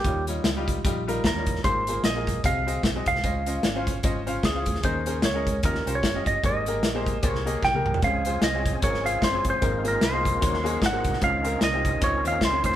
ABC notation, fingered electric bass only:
X:1
M:4/4
L:1/8
Q:"Swing" 1/4=150
K:Ab
V:1 name="Fingered electric bass" clef=bass
E,,2 D,,2 B,,,2 E,,2 | A,,,2 B,,,2 C,,2 _C,, =C,, | D,,2 A,,,2 A,,,2 D,, =D,, | E,,2 D,,2 E,, C,, z G,,, |
A,,,2 B,,,2 C,,2 _C,, =C,, | D,,2 C,,2 A,,,2 _G,,, =G,,, | A,,,2 C,,2 E,,2 A,,, C,, | D,,2 C,,2 D,, E,, D,, =D,, |]